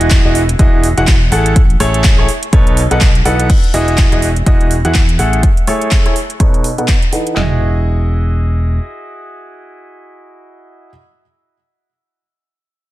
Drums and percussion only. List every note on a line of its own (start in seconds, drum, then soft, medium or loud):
0.01 closed hi-hat medium
0.10 kick loud
0.10 clap loud
0.10 closed hi-hat medium
0.35 open hi-hat medium
0.49 closed hi-hat medium
0.59 kick loud
0.59 closed hi-hat medium
0.83 open hi-hat loud
0.98 closed hi-hat medium
1.07 kick loud
1.07 clap loud
1.07 closed hi-hat medium
1.32 open hi-hat medium
1.46 closed hi-hat medium
1.56 kick loud
1.56 closed hi-hat medium
1.70 closed hi-hat soft
1.80 open hi-hat loud
1.94 closed hi-hat medium
2.04 kick loud
2.04 clap loud
2.04 closed hi-hat medium
2.29 open hi-hat medium
2.43 closed hi-hat medium
2.53 kick loud
2.53 closed hi-hat medium
2.67 closed hi-hat soft
2.77 open hi-hat loud
2.91 closed hi-hat medium
3.01 kick loud
3.01 clap loud
3.01 closed hi-hat medium
3.15 closed hi-hat soft
3.25 open hi-hat medium
3.40 closed hi-hat medium
3.50 kick loud
3.50 closed hi-hat medium
3.50 crash medium
3.64 closed hi-hat soft
3.74 open hi-hat loud
3.88 closed hi-hat soft
3.98 kick loud
3.98 clap loud
3.98 closed hi-hat loud
4.12 closed hi-hat soft
4.22 open hi-hat medium
4.36 closed hi-hat soft
4.46 kick loud
4.46 closed hi-hat medium
4.61 closed hi-hat soft
4.71 open hi-hat loud
4.85 closed hi-hat soft
4.94 kick loud
4.94 clap loud
4.94 closed hi-hat medium
5.09 closed hi-hat soft
5.19 open hi-hat medium
5.33 closed hi-hat soft
5.43 kick loud
5.43 closed hi-hat medium
5.57 closed hi-hat soft
5.67 open hi-hat loud
5.81 closed hi-hat soft
5.91 kick loud
5.91 clap loud
5.91 closed hi-hat medium
6.06 closed hi-hat soft
6.16 open hi-hat medium
6.30 closed hi-hat soft
6.40 kick loud
6.40 closed hi-hat medium
6.54 closed hi-hat soft
6.64 open hi-hat loud
6.78 closed hi-hat soft
6.88 kick loud
6.88 clap loud
6.88 closed hi-hat medium
7.02 closed hi-hat soft
7.13 open hi-hat medium
7.27 closed hi-hat soft
7.37 snare medium
7.37 clap medium
7.37 floor tom medium